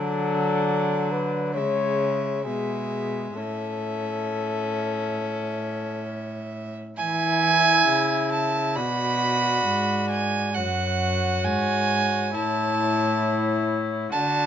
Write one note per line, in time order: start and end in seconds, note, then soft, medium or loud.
0.00 1.58 D3 medium
0.00 1.57 F#3 medium
0.00 1.13 A4 medium
0.00 1.52 D5 medium
1.12 1.54 B4 medium
1.55 2.47 C#3 medium
1.55 2.44 G#3 medium
1.55 2.43 C#5 medium
1.55 2.44 E5 medium
2.45 3.35 B2 medium
2.45 3.38 G#3 medium
2.45 3.33 G#4 medium
2.45 3.34 E5 medium
3.36 6.73 A2 medium
3.36 6.78 C#4 medium
3.36 6.03 A4 medium
3.36 6.73 E5 medium
6.97 7.83 E3 medium
6.97 8.78 E4 medium
6.97 8.78 E5 medium
6.97 8.27 G#5 loud
7.87 8.78 C#3 medium
8.32 8.77 A5 medium
8.76 9.65 B2 medium
8.76 10.54 F#4 medium
8.76 10.57 D5 medium
8.76 10.10 B5 loud
9.66 10.57 G#2 medium
10.10 10.56 G#5 loud
10.55 11.46 F#2 medium
10.55 12.30 F#4 medium
10.55 12.33 C#5 medium
10.55 11.46 F#5 medium
11.44 12.34 G#2 medium
11.44 12.36 G#5 loud
12.33 14.11 A2 medium
12.33 14.08 E4 medium
12.33 14.08 C#5 medium
12.33 13.67 A5 medium
14.12 14.46 D3 medium
14.12 14.46 F#4 medium
14.12 14.46 D5 medium
14.12 14.46 A5 loud